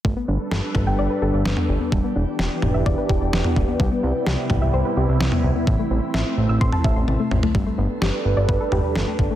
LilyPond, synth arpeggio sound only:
\new Staff \with { instrumentName = "Synth arpeggio sound" } { \time 4/4 \key g \major \tempo 4 = 128 a16 b16 d'16 r16 a'16 r8 g''16 d''16 b'16 a'16 r8 b16 r16 b16 | g16 b16 d'16 r16 g'16 r8 e''16 d''16 b'16 g'16 r8 b16 r16 b16 | g16 b16 c'16 r16 g'16 r8 e''16 c''16 b'16 g'16 r8 b16 r16 b16 | e16 a16 c'16 r16 e''16 r8 e'''16 c'''16 a''16 e''16 r8 a16 r16 a16 |
g16 a16 b16 r16 g'16 r8 d''16 b'16 a'16 g'16 r8 a16 r16 a16 | }